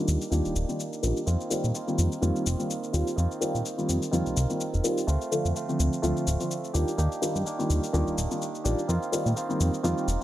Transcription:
Already playing: grand piano D#3 G3 A#3 D4 F4, clean electric guitar D#3 A#3 D4 G4
0.08 analog synth bass D#2, shaker
0.22 shaker
0.30 analog synth bass D#2, clean electric guitar D#3 A#3 D4 G4, grand piano D#3 G3 A#3 D4 F4, shaker
0.45 analog synth bass D#1, shaker
0.55 analog synth bass D#1, shaker
0.68 grand piano D#3 G3 A#3 D4 F4, shaker
0.80 shaker
0.93 shaker
1.02 analog synth bass A#1, grand piano D#3 G3 A#3 D4 F4, shaker
1.17 shaker
1.26 analog synth bass F2, clean electric guitar D#3 A#3 C4 F4, shaker
1.41 shaker
1.50 grand piano D#3 G3 A#3 C4 F4, shaker
1.64 analog synth bass A#2, shaker
1.74 clean electric guitar D#3 A#3 C4 F4, shaker
1.87 grand piano D#3 G3 A#3 C4 F4, shaker
1.98 analog synth bass F2, shaker
2.12 shaker
2.21 analog synth bass F2, grand piano D#3 G3 A#3 C4 F4, clean electric guitar D#3 A#3 C4 F4, shaker
2.36 shaker
2.46 analog synth bass F1, shaker
2.58 grand piano D#3 G3 A#3 C4 F4, shaker
2.70 shaker
2.84 shaker
2.93 analog synth bass D#2, grand piano D#3 G3 A#3 C4 F4, clean electric guitar A#3 C4 F4, shaker
3.07 shaker
3.16 analog synth bass F2, clean electric guitar D#3 A#3 C4 F4, shaker
3.31 shaker
3.40 grand piano D#3 G3 A#3 C4 F4, shaker
3.54 analog synth bass A#2, shaker
3.66 shaker
3.78 grand piano D#3 G3 A#3 C4 F4, shaker
3.89 analog synth bass F2, shaker
4.02 shaker
4.11 analog synth bass F2, clean electric guitar D#3 A#3 C4 F4, grand piano D#3 G3 A#3 C4 F4, shaker
4.26 analog synth bass C2, shaker
4.36 analog synth bass C2, shaker
4.49 grand piano D#3 G3 A#3 C4 F4, shaker
4.61 shaker
4.73 analog synth bass F1, shaker
4.84 grand piano D#3 G3 A#3 C4 F4, shaker
4.98 shaker
5.07 analog synth bass D2, clean electric guitar A3 C4 F4, shaker
5.22 shaker
5.31 grand piano D3 F3 A3 C4 F4, shaker
5.45 analog synth bass F2, shaker
5.55 clean electric guitar A3 C4 F4, shaker
5.68 grand piano D3 F3 A3 C4 F4, shaker
5.79 analog synth bass D2, shaker
5.93 shaker
6.02 analog synth bass D2, grand piano D3 F3 A3 C4 F4, clean electric guitar A3 C4 F4, shaker
6.17 shaker
6.27 analog synth bass D1, shaker
6.40 grand piano D3 F3 A3 C4 F4, shaker
6.51 shaker
6.64 shaker
6.74 analog synth bass D#2, grand piano D#3 G3 A#3 D4 F4, clean electric guitar A#3 D4 G4, shaker
6.88 shaker
6.98 analog synth bass D#2, clean electric guitar D#3 A#3 D4 G4, shaker
7.12 shaker
7.21 grand piano D#3 G3 A#3 D4 F4, shaker
7.35 analog synth bass G2, shaker
7.45 clean electric guitar D#3 A#3 D4 G4, shaker
7.58 grand piano D#3 G3 A#3 D4 F4, shaker
7.69 analog synth bass D#2, tambourine, shaker
7.84 shaker
7.93 analog synth bass D#2, clean electric guitar D#3 A#3 D4 G4, grand piano D#3 G3 A#3 D4 F4, shaker
8.07 analog synth bass D#1, shaker
8.17 analog synth bass D#1, shaker
8.30 grand piano D#3 G3 A#3 D4 F4, shaker
8.42 tambourine, shaker
8.54 tambourine, shaker
8.64 analog synth bass A#1, grand piano D#3 G3 A#3 D4 F4, clean electric guitar A#3 D4 G4, shaker
8.79 shaker
8.88 analog synth bass F2, clean electric guitar D#3 A#3 C4 F4, shaker
9.03 shaker
9.12 grand piano D#3 G3 A#3 C4 F4, tambourine, shaker
9.26 analog synth bass A#2, tambourine, shaker
9.36 clean electric guitar D#3 A#3 C4 F4, shaker
9.49 grand piano D#3 G3 A#3 C4 F4, shaker
9.60 analog synth bass F2, tambourine, shaker
9.74 shaker
9.83 analog synth bass F2, grand piano D#3 G3 A#3 C4 F4, clean electric guitar D#3 A#3 C4 F4, shaker
9.98 shaker
10.07 analog synth bass F1, shaker
10.20 grand piano D#3 G3

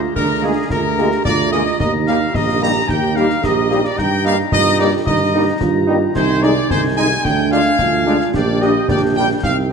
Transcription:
Already playing: euphonium F4, woodwind section G#4 A#5
0.16 tuba D2, euphonium D4, woodwind section G#4 A#5, trumpet section A#4, concert bass drum, snare
0.42 trombone section G#3 A#3, french horn section A#3 F4 G#4, trumpet section G#4
0.70 tuba D2, euphonium F4, woodwind section G#4 A#5, trumpet section A#4, concert bass drum, snare
0.98 trombone section G#3 A#3, french horn section A#3 F4 G#4, euphonium G4, snare
1.11 snare
1.25 tuba D2, euphonium F4, woodwind section G#4 A#5, trumpet section D5, concert bass drum, snare
1.52 trombone section G#3 A#3, french horn section A#3 F4 G#4, trumpet section D#5, snare
1.66 snare
1.80 tuba D#2, euphonium D#4, woodwind section G4 A#5, trumpet section D#5, concert bass drum, snare, crash
2.07 trombone section G3 A#3, french horn section A#3 D#4 G4, trumpet section F5, snare
2.34 tuba A#1, euphonium G4, woodwind section G4 A#5, trumpet section D#5, concert bass drum, snare
2.62 trombone section G3 A#3, french horn section A#3 D#4 G4, trumpet section A#5
2.88 tuba D#2, euphonium D#4, woodwind section G4 A#5, trumpet section G5, concert bass drum, snare
3.16 trombone section G3 A#3, french horn section A#3 D#4 G4, trumpet section F5, snare
3.30 snare
3.42 tuba A#1, euphonium G4, woodwind section G4 A#5, trumpet section D#5, concert bass drum, snare
3.71 trombone section G3 A#3, french horn section A#3 D#4 G4, snare
3.85 trumpet section D5, snare
3.97 tuba G2, woodwind section D#4 A#5, trumpet section G5, concert bass drum, snare
4.25 trombone section G3 D#4, french horn section A#3 D#4 G4, trumpet section F5, snare
4.52 tuba G2, woodwind section D#4 A#5, euphonium F4, trumpet section D#5, concert bass drum, snare
4.78 trombone section G3 D#4, french horn section A#3 D#4 G4, trumpet section D5
5.06 tuba G2, euphonium D#4, woodwind section D#4 A#5, trumpet section D#5, concert bass drum, snare
5.34 trombone section G3 D#4, french horn section A#3 D#4 G4, euphonium G4
5.61 tuba G2, euphonium F4, concert bass drum, snare
5.87 trombone section G3 D#4, french horn section A#3 D#4 G4
6.15 tuba C2, euphonium D#4, woodwind section D#4 G#5, trumpet section C5, concert bass drum, snare, crash
6.42 trombone section G#3 D#4, french horn section G#3 D#4 G#4, trumpet section D5, snare
6.69 tuba C2, woodwind section D#4 G#5, trumpet section C5, concert bass drum, snare
6.97 trombone section G#3 D#4, french horn section G#3 D#4 G#4, trumpet section G#5
7.24 tuba D2, woodwind section D4 G#5, euphonium D4, trumpet section G5, concert bass drum, snare
7.52 trombone section G#3 D4, french horn section G#3 D4 F4, trumpet section F5, snare
7.66 snare
7.79 tuba D2, euphonium F4, concert bass drum, snare
8.06 trombone section G#3 D4, french horn section G#3 D4 F4, snare
8.21 snare
8.33 tuba A#1, woodwind section D4 G5, euphonium G4, trumpet section D5, concert bass drum, snare
8.61 trombone section G3 D4, french horn section G3 D4 G4, trumpet section D#5, snare
8.88 tuba A#1, woodwind section D4 G5, trumpet section D5, concert bass drum, snare
9.16 french horn section G3 D4 G4, trombone section G3 D4, trumpet section G5
9.43 tuba C2, woodwind section C4 G5, euphonium D#4, trumpet section F5, concert bass drum, snare

